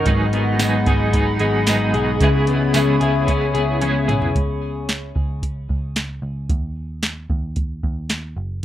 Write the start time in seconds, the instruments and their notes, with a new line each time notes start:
Already playing: clean electric guitar D#3 C#4 D#4 A#4, ambient pad D#5
0.06 picked electric bass G#1, clean electric guitar G#2 D#3 F#3 B3 D#4 G#4, ambient pad G#4 F#5 B5, kick, closed hi-hat
0.33 clean electric guitar F#3 B3 D#4 G#4, closed hi-hat
0.59 clean electric guitar G#2 D#3 F#3 B3 D#4 G#4, snare, closed hi-hat, tambourine
0.86 picked electric bass G#1, clean electric guitar B3 D#4 G#4, kick, closed hi-hat
0.90 clean electric guitar F#3
1.13 clean electric guitar F#3 B3 D#4 G#4, kick, closed hi-hat
1.39 picked electric bass G#1, clean electric guitar B3 D#4 G#4, closed hi-hat
1.44 clean electric guitar F#3
1.67 clean electric guitar G#2 D#3 F#3 B3 D#4 G#4, snare, closed hi-hat, tambourine
1.94 picked electric bass B1, clean electric guitar B3 D#4 G#4, closed hi-hat
2.20 picked electric bass C#2, clean electric guitar C#3 G#3 B3 E4 G#4, ambient pad C#5 E5 B5, kick, closed hi-hat
2.47 clean electric guitar B3 E4 G#4, closed hi-hat
2.74 clean electric guitar C#3 G#3 B3 C#4 E4 G#4, snare, closed hi-hat, tambourine
3.00 picked electric bass C#2, clean electric guitar B3 E4 G#4, closed hi-hat
3.27 clean electric guitar G#3 B3 C#4 E4, kick, closed hi-hat
3.31 clean electric guitar G#4
3.54 picked electric bass C#2, clean electric guitar B3 E4 G#4, closed hi-hat
3.81 clean electric guitar C#3 G#3 B3 C#4 E4 G#4, closed hi-hat, high tom
4.08 picked electric bass B1, clean electric guitar B3 E4 G#4, closed hi-hat, mid tom
4.22 floor tom
4.35 picked electric bass C#2, kick, closed hi-hat
4.89 snare, closed hi-hat
5.16 picked electric bass C#2, kick
5.43 kick, closed hi-hat
5.69 picked electric bass C#2, kick
5.96 snare, closed hi-hat
6.22 picked electric bass C#2
6.49 picked electric bass D#2, kick, closed hi-hat
7.03 snare, closed hi-hat
7.30 picked electric bass D#2, kick
7.56 kick, closed hi-hat
7.83 picked electric bass D#2, kick
8.10 snare, closed hi-hat
8.37 picked electric bass F#1